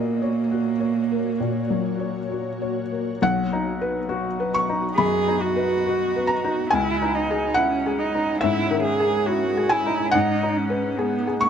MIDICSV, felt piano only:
0, 0, Header, 1, 2, 480
1, 0, Start_track
1, 0, Key_signature, 5, "major"
1, 0, Tempo, 892857
1, 1730, Time_signature, 4, 2, 24, 8
1, 2200, Tempo, 860832
1, 6328, End_track
2, 0, Start_track
2, 0, Title_t, "Felt piano"
2, 0, Program_c, 0, 0
2, 0, Control_c, 0, 64, 127
2, 0, Note_on_c, 0, 46, 41
2, 0, Note_on_c, 0, 58, 35
2, 118, Note_on_c, 0, 73, 32
2, 213, Note_off_c, 0, 58, 0
2, 276, Note_on_c, 0, 66, 30
2, 380, Note_off_c, 0, 73, 0
2, 431, Note_on_c, 0, 73, 29
2, 539, Note_off_c, 0, 66, 0
2, 599, Note_on_c, 0, 58, 31
2, 697, Note_off_c, 0, 73, 0
2, 745, Note_off_c, 0, 46, 0
2, 754, Note_on_c, 0, 46, 36
2, 861, Note_off_c, 0, 58, 0
2, 915, Note_on_c, 0, 54, 35
2, 1072, Note_on_c, 0, 73, 33
2, 1179, Note_off_c, 0, 54, 0
2, 1242, Note_on_c, 0, 66, 29
2, 1337, Note_off_c, 0, 73, 0
2, 1407, Note_on_c, 0, 73, 32
2, 1503, Note_off_c, 0, 66, 0
2, 1566, Note_on_c, 0, 58, 31
2, 1665, Note_off_c, 0, 73, 0
2, 1701, Note_off_c, 0, 46, 0
2, 1727, Note_off_c, 0, 58, 0
2, 1732, Note_on_c, 0, 35, 64
2, 1734, Note_on_c, 0, 78, 92
2, 1740, Control_c, 0, 64, 0
2, 1835, Control_c, 0, 64, 127
2, 1896, Note_on_c, 0, 63, 59
2, 2050, Note_on_c, 0, 71, 58
2, 2141, Note_off_c, 0, 63, 0
2, 2199, Note_on_c, 0, 66, 57
2, 2299, Note_off_c, 0, 71, 0
2, 2370, Note_on_c, 0, 71, 54
2, 2421, Note_off_c, 0, 78, 0
2, 2452, Note_on_c, 0, 85, 91
2, 2457, Note_off_c, 0, 66, 0
2, 2534, Note_on_c, 0, 63, 49
2, 2624, Note_off_c, 0, 71, 0
2, 2663, Note_off_c, 0, 35, 0
2, 2673, Note_off_c, 0, 85, 0
2, 2693, Note_on_c, 0, 83, 77
2, 2696, Note_on_c, 0, 42, 57
2, 2787, Note_off_c, 0, 63, 0
2, 2861, Note_on_c, 0, 63, 57
2, 2949, Note_off_c, 0, 42, 0
2, 3019, Note_on_c, 0, 71, 57
2, 3112, Note_off_c, 0, 63, 0
2, 3188, Note_on_c, 0, 66, 50
2, 3272, Note_off_c, 0, 71, 0
2, 3354, Note_on_c, 0, 71, 54
2, 3394, Note_off_c, 0, 83, 0
2, 3416, Note_on_c, 0, 82, 84
2, 3437, Note_off_c, 0, 66, 0
2, 3512, Note_on_c, 0, 63, 54
2, 3600, Note_off_c, 0, 71, 0
2, 3638, Note_off_c, 0, 82, 0
2, 3657, Note_on_c, 0, 80, 94
2, 3662, Note_off_c, 0, 63, 0
2, 3662, Control_c, 0, 64, 0
2, 3673, Note_on_c, 0, 37, 68
2, 3767, Control_c, 0, 64, 127
2, 3832, Note_on_c, 0, 63, 59
2, 3991, Note_on_c, 0, 68, 61
2, 4075, Note_off_c, 0, 63, 0
2, 4107, Note_off_c, 0, 80, 0
2, 4125, Note_on_c, 0, 78, 96
2, 4143, Note_on_c, 0, 64, 58
2, 4234, Note_off_c, 0, 68, 0
2, 4303, Note_on_c, 0, 68, 53
2, 4389, Note_off_c, 0, 64, 0
2, 4460, Note_on_c, 0, 63, 54
2, 4549, Note_off_c, 0, 68, 0
2, 4581, Note_off_c, 0, 78, 0
2, 4592, Note_off_c, 0, 37, 0
2, 4606, Note_on_c, 0, 76, 94
2, 4621, Note_on_c, 0, 44, 61
2, 4707, Note_off_c, 0, 63, 0
2, 4772, Note_on_c, 0, 51, 62
2, 4867, Note_off_c, 0, 44, 0
2, 4937, Note_on_c, 0, 68, 65
2, 5022, Note_off_c, 0, 51, 0
2, 5091, Note_on_c, 0, 64, 58
2, 5185, Note_off_c, 0, 68, 0
2, 5255, Note_on_c, 0, 68, 59
2, 5301, Note_off_c, 0, 76, 0
2, 5324, Note_on_c, 0, 80, 92
2, 5343, Note_off_c, 0, 64, 0
2, 5418, Note_on_c, 0, 63, 55
2, 5506, Note_off_c, 0, 68, 0
2, 5548, Note_off_c, 0, 80, 0
2, 5558, Note_on_c, 0, 78, 105
2, 5571, Note_off_c, 0, 63, 0
2, 5574, Control_c, 0, 64, 0
2, 5577, Note_on_c, 0, 44, 74
2, 5671, Control_c, 0, 64, 127
2, 5734, Note_on_c, 0, 63, 62
2, 5883, Note_on_c, 0, 71, 63
2, 5982, Note_off_c, 0, 63, 0
2, 6044, Note_on_c, 0, 68, 65
2, 6137, Note_off_c, 0, 71, 0
2, 6196, Note_off_c, 0, 68, 0
2, 6204, Note_on_c, 0, 68, 57
2, 6254, Note_off_c, 0, 78, 0
2, 6278, Note_on_c, 0, 85, 101
2, 6328, Note_off_c, 0, 44, 0
2, 6328, Note_off_c, 0, 68, 0
2, 6328, Note_off_c, 0, 85, 0
2, 6328, End_track
0, 0, End_of_file